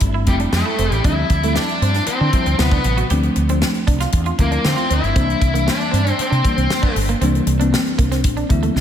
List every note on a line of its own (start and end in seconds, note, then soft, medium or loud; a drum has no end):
0.00 0.27 G1 medium
0.00 0.27 G3 medium
0.00 0.27 A3 medium
0.00 0.27 C4 medium
0.00 1.06 D4 medium
0.00 0.28 E4 medium
0.00 kick medium
0.00 closed hi-hat medium
0.14 0.23 E4 medium
0.26 0.45 F1 medium
0.26 0.80 G3 medium
0.26 0.35 G3 medium
0.26 0.80 A3 medium
0.26 0.80 C4 medium
0.26 0.80 E4 medium
0.26 muted clean electric guitar stroke soft
0.26 kick medium
0.26 closed hi-hat medium
0.40 0.49 D4 medium
0.40 closed hi-hat soft
0.52 0.61 F2 medium
0.52 1.02 A3 medium
0.52 muted clean electric guitar stroke soft
0.52 snare loud
0.66 0.74 E4 medium
0.79 0.88 F1 medium
0.79 0.87 C4 medium
0.79 closed hi-hat medium
0.90 1.00 A1 medium
0.90 closed hi-hat soft
1.04 1.22 D2 medium
1.04 1.31 F3 medium
1.04 1.31 G3 medium
1.04 1.31 C4 medium
1.04 1.13 D4 medium
1.04 1.52 E4 medium
1.04 1.31 E4 medium
1.04 kick loud
1.04 closed hi-hat medium
1.30 1.57 D2 medium
1.30 muted clean electric guitar stroke soft
1.30 kick medium
1.30 closed hi-hat medium
1.43 2.04 F3 medium
1.43 2.05 G3 medium
1.43 1.52 A3 medium
1.43 2.05 C4 medium
1.43 2.05 E4 medium
1.43 closed hi-hat soft
1.55 2.03 D4 medium
1.55 muted clean electric guitar stroke soft
1.55 snare loud
1.69 closed hi-hat soft
1.81 1.99 G2 medium
1.81 1.91 C4 medium
1.81 closed hi-hat medium
1.94 2.04 D4 medium
1.94 snare soft
1.94 closed hi-hat soft
2.06 2.55 C4 medium
2.06 muted fretless electric bass stroke soft
2.06 closed hi-hat medium
2.21 2.29 D3 medium
2.21 2.29 D4 medium
2.33 2.59 F3 medium
2.33 2.59 G3 medium
2.33 2.59 C4 medium
2.33 2.59 E4 medium
2.33 muted clean electric guitar stroke soft
2.33 kick medium
2.33 closed hi-hat medium
2.46 2.55 D2 medium
2.46 2.55 C4 medium
2.46 closed hi-hat soft
2.59 2.77 D2 medium
2.59 3.00 C3 medium
2.59 3.00 F#3 medium
2.59 2.95 B3 medium
2.59 3.00 B3 medium
2.59 3.00 E4 medium
2.59 snare loud
2.71 2.81 D4 medium
2.71 kick medium
2.71 closed hi-hat soft
2.84 3.02 A1 medium
2.84 muted clean electric guitar stroke soft
2.84 closed hi-hat medium
2.97 3.06 F#4 medium
2.97 closed hi-hat soft
3.10 3.28 D2 medium
3.10 3.37 F3 medium
3.10 3.37 A3 medium
3.10 3.37 C4 medium
3.10 3.37 D4 medium
3.10 3.19 G4 medium
3.10 closed hi-hat medium
3.23 closed hi-hat soft
3.36 3.63 D2 medium
3.36 muted clean electric guitar stroke soft
3.36 closed hi-hat medium
3.49 4.10 F3 medium
3.49 4.10 A3 medium
3.49 4.10 C4 medium
3.49 3.58 C4 medium
3.49 4.11 D4 medium
3.49 closed hi-hat soft
3.62 muted clean electric guitar stroke soft
3.62 snare loud
3.75 closed hi-hat soft
3.87 4.05 C2 medium
3.87 3.96 D4 medium
3.87 kick medium
3.87 closed hi-hat medium
4.00 4.09 F4 medium
4.00 snare soft
4.00 closed hi-hat soft
4.12 4.31 E2 medium
4.12 kick medium
4.12 closed hi-hat medium
4.26 4.35 F4 medium
4.26 closed hi-hat soft
4.39 4.56 D2 medium
4.39 4.91 F3 medium
4.39 4.92 A3 medium
4.39 4.66 A#3 medium
4.39 4.92 C4 medium
4.39 4.92 E4 medium
4.39 muted clean electric guitar stroke soft
4.39 kick medium
4.39 closed hi-hat medium
4.51 4.60 D4 medium
4.51 closed hi-hat soft
4.64 4.74 D3 medium
4.64 4.92 C4 medium
4.64 muted clean electric guitar stroke soft
4.64 snare loud
4.76 4.85 F4 medium
4.76 closed hi-hat soft
4.90 4.99 D2 medium
4.90 4.99 C4 medium
4.90 5.69 E4 medium
4.90 closed hi-hat medium
5.03 5.12 G1 medium
5.03 closed hi-hat soft
5.15 5.34 C2 loud
5.15 5.42 E3 medium
5.15 5.42 G3 medium
5.15 5.42 A#3 medium
5.15 5.25 C4 medium
5.15 5.42 D4 medium
5.15 kick loud
5.15 closed hi-hat medium
5.30 closed hi-hat soft
5.40 5.68 C2 medium
5.40 muted clean electric guitar stroke soft
5.40 kick medium
5.40 closed hi-hat medium
5.54 6.16 E3 medium
5.54 6.16 G3 medium
5.54 5.63 A#3 medium
5.54 6.16 A#3 medium
5.54 6.16 D4 medium
5.54 closed hi-hat medium
5.67 6.21 D4 medium
5.67 muted clean electric guitar stroke soft
5.67 snare medium
5.81 closed hi-hat soft
5.91 6.11 G2 medium
5.91 6.01 C4 medium
5.91 closed hi-hat medium
6.05 6.14 D4 medium
6.05 closed hi-hat soft
6.19 6.93 C4 medium
6.19 muted fretless electric bass stroke soft
6.19 closed hi-hat medium
6.30 6.40 C3 medium
6.30 6.39 D4 medium
6.30 closed hi-hat soft
6.44 6.97 E3 medium
6.44 6.97 G3 medium
6.44 6.97 A#3 medium
6.44 6.97 D4 medium
6.44 muted clean electric guitar stroke soft
6.44 kick medium
6.44 closed hi-hat medium
6.56 6.66 C2 medium
6.56 6.65 C4 medium
6.56 closed hi-hat soft
6.70 snare loud
6.82 6.91 D4 medium
6.82 kick medium
6.96 7.13 G1 medium
6.96 muted clean electric guitar stroke soft
6.96 open hi-hat medium
7.09 7.17 A#3 medium
7.09 closed hi-hat soft
7.21 7.39 C2 medium
7.21 7.48 E3 medium
7.21 7.48 G3 medium
7.21 7.48 A#3 medium
7.21 7.30 C4 medium
7.21 7.48 D4 medium
7.21 closed hi-hat medium
7.35 closed hi-hat soft
7.47 7.73 C2 loud
7.47 muted clean electric guitar stroke soft
7.47 closed hi-hat medium
7.60 8.21 E3 medium
7.60 8.21 G3 medium
7.60 8.21 A#3 medium
7.60 8.22 C4 medium
7.60 7.68 D4 medium
7.60 closed hi-hat medium
7.73 muted clean electric guitar stroke soft
7.73 snare loud
7.86 closed hi-hat soft
7.98 8.25 C2 medium
7.98 8.07 A#3 medium
7.98 kick medium
7.98 closed hi-hat medium
8.12 8.20 C4 medium
8.12 snare soft
8.12 closed hi-hat soft
8.24 8.42 A#1 medium
8.24 kick medium
8.24 closed hi-hat medium
8.37 8.45 D4 medium
8.37 closed hi-hat soft
8.49 8.68 D2 medium
8.49 8.81 E3 medium
8.49 8.81 G3 medium
8.49 8.76 A#3 medium
8.49 8.76 E4 medium
8.49 muted clean electric guitar stroke soft
8.49 kick medium
8.49 closed hi-hat medium
8.63 8.71 A3 medium
8.63 closed hi-hat soft
8.76 8.81 C2 medium
8.76 8.81 A3 soft
8.76 8.81 D4 medium
8.76 muted clean electric guitar stroke soft
8.76 snare medium